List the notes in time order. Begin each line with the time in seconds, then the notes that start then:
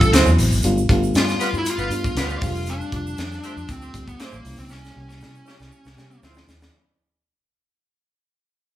Already playing: G3 A3 C4 D4 F4
0.01 kick, shaker
0.12 D2 F#3 A3 B3 C4 E4 F#4 C5, snare, closed hi-hat, shaker
0.26 E2, shaker
0.38 A1, open hi-hat, shaker
0.52 G#1, shaker
0.62 G1 G3 A3 B3 D4 F4, closed hi-hat, shaker
0.78 shaker
0.89 G1 G3 A3 B3 D4 F4, kick, closed hi-hat
1.03 shaker
1.14 G2 F4, snare, closed hi-hat, shaker
1.28 snare, shaker
1.40 G3 B3 F4 B4, snare, closed hi-hat, shaker
1.53 G2, shaker
1.58 E4
1.65 closed hi-hat, shaker
1.70 F4
1.78 G1 G3 B3 F4 B4, shaker
1.90 G2 G3 A3 B3 D4 F4, closed hi-hat, shaker
2.04 kick, shaker
2.15 D2 G3 B3 F4 B4, snare, closed hi-hat, shaker
2.29 shaker
2.41 F1 G3 G#3 C4 D4 F4, kick, open hi-hat, shaker
2.48 A3
2.55 shaker
2.66 closed hi-hat, shaker
2.70 D4
2.81 shaker
2.92 F1 G3 A3 C4 D4 F4, kick, closed hi-hat
3.07 shaker
3.17 F2, snare, closed hi-hat, shaker
3.32 snare, shaker
3.44 A3 C4 G4 C5, closed hi-hat, shaker
3.56 F2, shaker
3.69 D2 C4, kick, closed hi-hat, shaker
3.82 A3 C4 G4 C5, shaker
3.93 D2 G3 A3 C4 D4 G4, kick, closed hi-hat, shaker
4.08 B3, kick, shaker
4.20 A3 A#3 C4 G4 C5, snare, closed hi-hat, shaker
4.32 A1, shaker
4.44 C2 G3 A#3 C4 C#4 E4, open hi-hat, shaker
4.58 C#2 C4, shaker
4.69 C2 C#4, snare, shaker
4.84 snare, shaker
4.95 C2 C3 G3 A#3 C#4 G4
5.09 C#4, snare, shaker
5.20 C3, snare, shaker
5.35 shaker
5.46 A#3 C#4 G4 C#5, snare, shaker
5.60 C2, snare, shaker
5.72 shaker
5.84 C2 A#3 C#4 G4 C#5, snare, shaker
5.97 C3 G3 A#3 C4 C#4 G4, snare, shaker
6.11 shaker
6.22 D2 F3 A3 C4 D4 E4 F4 C5, snare, shaker
6.34 snare, shaker
6.48 D#2, snare, shaker
6.61 snare, shaker